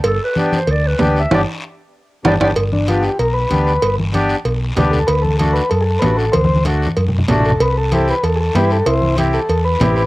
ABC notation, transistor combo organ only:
X:1
M:4/4
L:1/8
Q:1/4=190
K:G
V:1 name="Transistor combo organ"
z8 | z8 | z D =F G _B =B3- | B z6 A |
B A A B A [_A=A] B A | c2 z4 z A | B A A B A [_A=A] B A | [Ec]2 z A2 B2 B |]